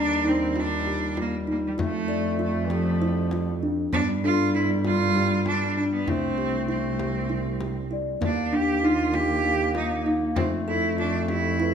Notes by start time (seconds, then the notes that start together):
Already playing: D#2 G3 D4 A#5
0.25 C4 D#4
0.56 D4 F4, frame drum
0.87 G4, frame drum
1.17 A#3 F4, frame drum
1.47 D#4, frame drum
1.52 A#3
1.67 G3
1.78 F2 A3 F4, frame drum
1.84 A3
2.08 A4 D5
2.39 F4
2.43 A3
2.65 E3
2.70 F3 G4, frame drum
3.01 E4, frame drum
3.31 F4, frame drum
3.62 D4, frame drum
3.93 G2 G3 B3 D4, frame drum
4.24 D4 F4 A4
4.55 E4
4.84 F4, frame drum
5.15 G4, frame drum
5.45 D4 F4, frame drum
5.77 D4, frame drum
5.92 B3
6.07 C2 A3 C4 E4, frame drum
6.38 G4, frame drum
6.68 C4 E4
6.99 G4, frame drum
7.29 E4, frame drum
7.60 G4, frame drum
7.91 E4 D5
8.21 D#2 A#3 D4, frame drum
8.53 D4 G4
8.83 D#4 F4
9.14 F4 G4, frame drum
9.44 G4
9.75 D#4 F4, frame drum
10.06 D#4, frame drum
10.36 F2 A3 C4 F4, frame drum
10.67 E4 A4
10.98 D4 F4
11.28 E4 G4, frame drum
11.60 E4 B4